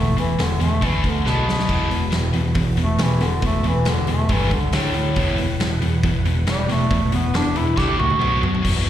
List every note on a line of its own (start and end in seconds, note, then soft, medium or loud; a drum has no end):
0.00 0.14 E1 medium
0.00 0.15 E2 medium
0.00 0.15 B2 medium
0.00 0.18 A3 medium
0.17 0.36 E1 medium
0.17 0.36 E2 medium
0.17 0.37 B2 medium
0.17 0.42 E3 medium
0.17 open hi-hat medium
0.38 0.58 E1 medium
0.38 0.58 E2 medium
0.38 0.58 B2 medium
0.38 0.61 D3 loud
0.38 snare loud
0.38 open hi-hat medium
0.60 0.80 E2 medium
0.60 0.80 B2 medium
0.60 0.86 A3 loud
0.60 open hi-hat medium
0.81 1.01 D2 medium
0.81 1.02 D3 medium
0.81 1.04 E3 medium
0.81 1.02 A3 loud
0.81 1.03 D4 loud
0.81 kick loud
0.81 open hi-hat medium
1.03 1.23 D2 medium
1.03 1.23 D3 medium
1.03 1.29 D3 medium
1.03 1.23 A3 medium
1.03 kick medium
1.03 open hi-hat medium
1.25 1.45 B1 medium
1.25 1.46 B2 medium
1.25 2.11 B2 loud
1.25 1.46 F#3 medium
1.25 1.46 B3 loud
1.25 snare medium
1.47 1.67 D2 medium
1.47 1.67 B2 medium
1.47 1.67 F#3 medium
1.47 snare medium
1.59 snare medium
1.68 1.88 E1 medium
1.68 1.88 E2 medium
1.68 1.89 B2 medium
1.68 1.89 E3 medium
1.68 4.27 E3 medium
1.68 4.27 B3 medium
1.68 4.27 F#4 medium
1.68 kick loud
1.68 crash medium
1.89 2.10 E1 medium
1.89 2.10 E2 medium
1.89 2.10 B2 medium
1.89 open hi-hat medium
2.11 2.32 E1 medium
2.11 2.31 E2 medium
2.11 2.31 B2 medium
2.11 snare loud
2.11 open hi-hat medium
2.33 2.53 E2 medium
2.33 2.53 B2 medium
2.33 open hi-hat medium
2.55 2.75 E2 medium
2.55 2.75 B2 medium
2.55 kick loud
2.55 open hi-hat medium
2.77 2.97 E1 medium
2.77 2.97 E2 medium
2.77 2.97 B2 medium
2.77 3.04 A3 loud
2.77 open hi-hat medium
2.98 3.18 E1 loud
2.98 3.19 E2 medium
2.98 3.19 B2 medium
2.98 3.24 E3 loud
2.98 snare loud
2.98 open hi-hat medium
3.20 3.40 E1 medium
3.20 3.41 E2 medium
3.20 3.41 B2 medium
3.20 3.43 D3 medium
3.20 snare soft
3.20 open hi-hat medium
3.42 3.62 E1 medium
3.42 3.62 E2 medium
3.42 3.62 B2 medium
3.42 3.69 A3 loud
3.42 kick loud
3.42 open hi-hat medium
3.64 3.83 E1 medium
3.64 3.84 E2 medium
3.64 3.84 B2 medium
3.64 open hi-hat medium
3.68 3.90 E3 loud
3.85 4.06 E1 medium
3.85 4.06 E2 medium
3.85 4.06 B2 medium
3.85 4.09 D3 medium
3.85 snare loud
3.85 open hi-hat medium
4.07 4.27 E2 medium
4.07 4.28 B2 loud
4.07 4.34 A3 loud
4.07 open hi-hat medium
4.29 4.49 G1 medium
4.29 4.50 G2 loud
4.29 4.50 D3 loud
4.29 4.55 E3 loud
4.29 4.73 G3 medium
4.29 4.51 G3 loud
4.29 5.16 D4 medium
4.29 4.72 A4 medium
4.29 kick loud
4.29 open hi-hat medium
4.51 4.71 C#2 medium
4.51 4.71 G2 medium
4.51 4.71 D3 medium
4.51 4.76 D3 medium
4.51 kick medium
4.51 open hi-hat medium
4.72 4.92 D2 medium
4.72 5.58 A2 loud
4.72 4.93 D3 medium
4.72 4.94 A3 loud
4.72 4.94 D4 medium
4.72 5.16 A4 medium
4.72 5.16 E5 medium
4.72 snare loud
4.72 open hi-hat medium
4.94 5.14 D2 medium
4.94 5.14 D3 medium
4.94 5.15 A3 medium
4.94 open hi-hat medium
5.16 5.36 E1 medium
5.16 5.37 E2 medium
5.16 5.38 B2 medium
5.16 5.38 E3 loud
5.16 7.75 E4 medium
5.16 7.74 B4 medium
5.16 7.74 F#5 medium
5.16 kick loud
5.16 open hi-hat medium
5.38 5.58 E1 medium
5.38 5.58 E2 medium
5.38 5.58 B2 medium
5.38 open hi-hat medium
5.60 5.79 E1 loud
5.60 5.80 E2 medium
5.60 5.80 B2 medium
5.60 snare loud
5.60 open hi-hat medium
5.81 6.01 E2 loud
5.81 6.01 E2 medium
5.81 6.02 B2 medium
5.81 open hi-hat medium
6.03 6.23 E2 medium
6.03 6.23 B2 medium
6.03 kick loud
6.03 open hi-hat medium
6.25 6.44 E1 medium
6.25 6.45 E2 medium
6.25 6.45 B2 medium
6.25 open hi-hat medium
6.47 6.66 E1 loud
6.47 6.66 E2 medium
6.47 6.67 B2 medium
6.47 6.69 G3 loud
6.47 snare loud
6.47 open hi-hat medium
6.69 6.88 E1 medium
6.69 6.89 E2 medium
6.69 6.89 B2 medium
6.69 7.12 A3 medium
6.69 snare soft
6.69 open hi-hat medium
6.91 7.10 E1 medium
6.91 7.10 E2 medium
6.91 7.10 B2 medium
6.91 kick loud
6.91 open hi-hat medium
7.12 7.31 E1 loud
7.12 7.32 E2 medium
7.12 7.32 B2 medium
7.12 7.37 B3 loud
7.12 open hi-hat medium
7.33 7.53 E1 loud
7.33 7.53 E2 medium
7.33 7.54 B2 medium
7.33 7.58 D4 loud
7.33 snare loud
7.33 open hi-hat medium
7.55 7.75 E2 medium
7.55 7.75 B2 medium
7.55 7.79 E4 loud
7.55 open hi-hat medium
7.76 7.96 D2 loud
7.76 7.97 D3 loud
7.76 7.97 A3 loud
7.76 8.20 D4 medium
7.76 7.98 D4 loud
7.76 7.98 G4 medium
7.76 8.20 A4 medium
7.76 8.20 E5 medium
7.76 kick loud
7.76 snare medium
7.98 8.18 C#2 medium
7.98 8.18 D3 medium
7.98 8.18 A3 medium
7.98 8.41 F#4 loud
7.98 high tom medium
8.10 high tom medium
8.19 8.39 B1 loud
8.19 8.40 B2 medium
8.19 8.41 F#3 medium
8.19 8.63 B3 medium
8.19 8.41 B3 medium
8.19 8.63 F#4 medium
8.19 8.63 C#5 medium
8.19 mid tom medium
8.42 8.61 F#2 medium
8.42 8.62 B2 medium
8.42 8.62 F#3 medium
8.42 floor tom loud
8.55 floor tom medium
8.63 8.85 E1 medium
8.63 8.84 E2 medium
8.63 8.85 B2 medium
8.63 8.85 E3 loud
8.63 8.90 E3 medium
8.63 8.90 B3 medium
8.63 8.90 F#4 medium
8.63 kick medium
8.63 crash loud
8.85 8.90 E1 medium
8.85 8.90 E2 medium
8.85 8.90 B2 medium